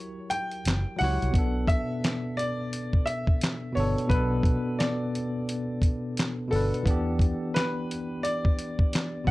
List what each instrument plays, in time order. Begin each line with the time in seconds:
Already playing: tine electric piano F#3 E4 G4 A#4, upright piano C#5
0.30 upright piano G5, closed hi-hat
0.51 closed hi-hat
0.65 fingered electric bass F#1, snare, clap, closed hi-hat
0.96 tine electric piano F#3 E4, upright piano F#5
1.01 fingered electric bass C#2, tine electric piano G4 C#5, snare, open hi-hat
1.22 fingered electric bass C2, closed hi-hat
1.31 fingered electric bass B1, tine electric piano B2 B3, kick
1.35 tine electric piano D4 A4, closed hi-hat
1.67 upright piano E5, kick, closed hi-hat
2.04 snare, clap, closed hi-hat
2.37 upright piano D5, closed hi-hat
2.73 closed hi-hat
2.93 kick
3.06 upright piano E5, closed hi-hat
3.27 kick
3.41 snare, clap, closed hi-hat
3.72 tine electric piano B2 B3, upright piano C#5
3.77 fingered electric bass G1, tine electric piano D4 A4, open hi-hat
3.98 closed hi-hat
4.07 fingered electric bass B1, tine electric piano B2 B3, upright piano B4, kick
4.11 tine electric piano D4 A4, closed hi-hat
4.43 kick, closed hi-hat
4.79 upright piano D5, snare, clap, closed hi-hat
5.15 closed hi-hat
5.49 closed hi-hat
5.82 kick, closed hi-hat
6.17 snare, clap, closed hi-hat
6.48 tine electric piano B2 B3, upright piano A4
6.53 fingered electric bass G1, tine electric piano D4 B4, open hi-hat
6.74 closed hi-hat
6.83 fingered electric bass E2, tine electric piano E3 B3, kick
6.87 tine electric piano D4 G4, closed hi-hat
7.19 kick, closed hi-hat
7.54 upright piano B4, snare, clap, closed hi-hat
7.91 closed hi-hat
8.23 upright piano D5, closed hi-hat
8.45 kick
8.59 closed hi-hat
8.79 kick
8.93 snare, clap, closed hi-hat
9.24 fingered electric bass B1, tine electric piano B2 B3, upright piano F#5, kick